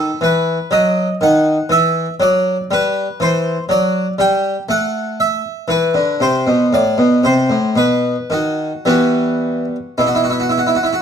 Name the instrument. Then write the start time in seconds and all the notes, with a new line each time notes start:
harpsichord
Already playing: A4
0.21 E3 B4
0.71 F#3 D#5
1.21 D#3 F#5
1.69 E3 E5
2.20 F#3 D5
2.71 G3 B4
3.20 E3 C5
3.69 F#3 D5
4.18 G3 G5
4.69 A3 F#5
5.20 E5
5.68 E3 B4
5.94 D3
6.20 C3 C5
6.47 B2
6.73 A2 D5
6.98 B2
7.24 C3 C5
7.50 A2
7.76 B2 B4
8.30 D#3 F#4
8.85 E3 G3 B3 F#4
9.98 B2 E4
10.07 F#4
10.15 E4
10.24 F#4
10.30 E4
10.40 F#4
10.49 E4
10.58 F#4
10.67 E4
10.75 F#4
10.83 E4
10.93 F#4